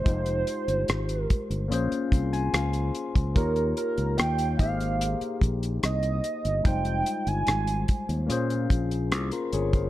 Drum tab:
HH |xxxxxxxxxxxxxxxx|xxxxxxxxxxxxxxxx|xxxxxxxxxxxxxxxx|
SD |----r-------r---|----r-------r---|----r-------r---|
BD |o-----o---o----o|o-----o---o-----|o-----o---o----o|